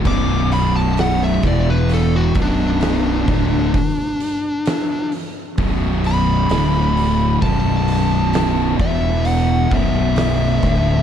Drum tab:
CC |x-------|--------|--------|
HH |-ooooooo|oooooooo|oooooooo|
SD |--o---o-|--o---o-|--o---o-|
BD |o--o-o-o|o---o---|o--o-o-o|